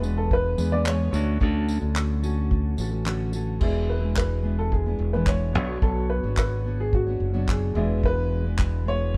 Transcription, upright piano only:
Already playing: B4
0.18 A4
0.33 B4
0.72 D5
0.87 C#5
3.62 G#4
3.90 B4
4.17 B4
4.59 A4
4.72 G#4
5.13 B4
5.28 C#5
5.83 A4
6.10 B4
6.39 B4
6.80 G#4
6.95 F#4
7.51 G#4
8.06 B4
8.88 C#5

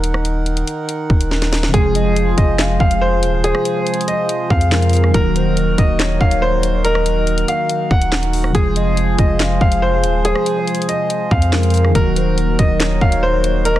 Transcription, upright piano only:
1.74 G#4
2.38 D#5
2.80 F5
3.01 C5
3.44 G#4
4.08 D#5
4.50 F5
5.14 A#4
5.78 D#5
6.21 F5
6.42 C5
6.84 A#4
7.48 F5
7.91 F#5
8.55 G#4
9.18 D#5
9.61 F5
9.82 C5
10.25 G#4
10.89 D#5
11.31 F5
11.95 A#4
12.59 D#5
13.01 F5
13.23 C5
13.65 A#4

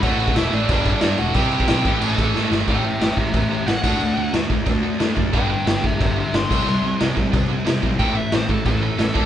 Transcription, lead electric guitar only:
0.03 F#4 F#5
0.36 E4 E5
0.54 D4 D5
0.95 D4 D5
1.18 F#4 F#5
1.35 G4 G5
2.00 A4 A5
2.70 E5 G5
2.85 E5 G5
3.02 E5 G5
3.19 G4 E5
3.34 G4 E5
3.49 G4 E5
3.66 F#5
5.33 B4 G5
5.50 B4 G5
5.67 B4 G5
5.85 G4 E5
6.02 G4 E5
6.19 G4 E5
6.35 C6
7.99 G5
8.16 E5
8.34 C5
8.49 A4
8.66 A4

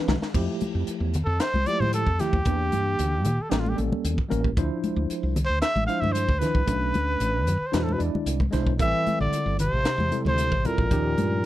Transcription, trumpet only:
1.25 A4
1.40 C5
1.67 D5
1.80 C5
1.94 A4
2.20 G4
3.42 A4
3.50 G4
3.59 F4
3.69 G4
5.46 C5
5.62 E5
5.87 F5
6.01 E5
6.12 C5
6.39 B4
7.66 C5
7.75 B4
7.84 A4
7.92 B4
8.81 E5
9.21 D5
9.60 C5
10.28 C5
10.66 A#4

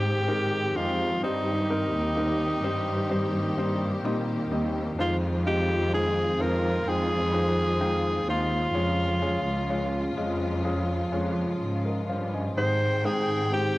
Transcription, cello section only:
Already playing: G#2
0.76 F2
1.23 G2
1.93 D#2
2.64 G2
3.57 G2
4.04 A#2
4.51 D#2
4.99 F2
6.39 F2
6.86 F2
8.27 D#2
8.73 F2
9.45 C#2
10.17 F2
11.11 F2
11.61 G#2
12.09 G2
12.57 G#2

